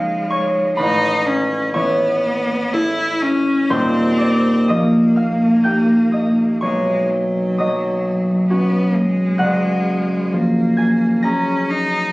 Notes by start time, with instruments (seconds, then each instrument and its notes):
Already playing: harp C#2 F3 C#4 D#4 F4 G#4 A#4 C5 C#5 D#5 F5 C#6 D#6 F6, cello G#3
0.30 harp C#5 C#6
0.77 harp A1 B4 B5, cello D#4
1.26 cello C#4
1.74 harp E3 C#5 C#6, cello B3
2.73 cello E4, harp E4 A4
3.22 cello C#4
3.70 harp D#1 D#2 C5 C6, cello C4
4.18 harp D5 D6
4.68 harp F3 D#5 D#6, cello A#3
5.16 harp F5 F6
5.64 harp D#4 G4 G5 G6
6.12 harp D#5 D#6
6.61 harp B1 C#5 C#6, cello G#3
7.10 cello F#3
7.58 harp F#3 D#5 D#6
8.49 cello B3, harp C#4 F#4
8.96 cello G#3
9.38 harp F#1 F#5 F#6
10.33 harp F3, cello A#3
10.77 harp G#5 G#6
11.23 cello C#4, harp C#4 G#4 A#5 A#6
11.70 cello D#4